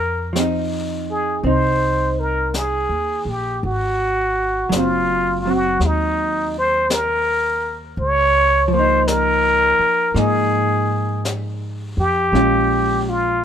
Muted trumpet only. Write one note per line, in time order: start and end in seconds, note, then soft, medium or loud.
0.00 0.35 A#4 medium
1.11 1.42 G#4 medium
1.46 2.21 C5 medium
2.20 2.54 A#4 medium
2.57 3.32 G#4 medium
3.30 3.63 G4 medium
3.66 4.77 F#4 medium
4.76 5.40 F4 medium
5.40 5.52 F4 medium
5.51 5.88 F#4 medium
5.86 6.57 D#4 medium
6.58 6.94 C5 medium
6.93 7.82 A#4 medium
8.00 8.74 C#5 medium
8.73 9.09 C5 medium
9.08 10.21 A#4 medium
10.19 11.26 G#4 medium
11.99 13.11 G4 medium
13.09 13.45 F4 medium